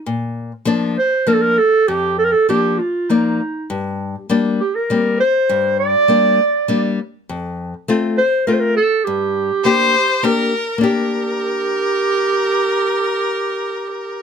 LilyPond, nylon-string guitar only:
\new Staff \with { instrumentName = "Nylon-string guitar" } { \time 3/4 \key g \minor \tempo 4 = 101 bes,4 <f bes d'>8 r8 <f bes d'>8 r8 | f,4 <f bes d'>8 r8 <f bes d''>8 r8 | g,4 <g bes d'>8 r8 <g bes c'>8 r8 | g,4 <g bes d'>8 r8 <g bes d'>8 r8 |
f,4 <a c' f'>8 r8 <a c' f'>8 r8 | g,4 <bes d' g'>8 r8 <bes d' g'>8 r8 | <bes d' g'>2.~ | <bes d' g'>2. | }